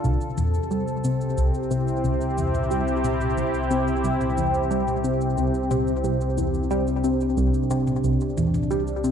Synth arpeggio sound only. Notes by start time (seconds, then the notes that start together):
0.04 C2
0.37 E2
0.71 G3
1.04 C3
1.37 C2
1.71 C3
2.04 C2
2.37 E2
2.71 G3
3.04 C3
3.38 C2
3.71 C3
4.04 C2
4.38 E2
4.71 G3
5.04 C3
5.37 C2
5.71 C3
6.04 C2
6.37 E2
6.71 G3
7.04 C3
7.37 C2
7.71 C3
8.04 C2
8.37 E2
8.71 G3
9.04 C3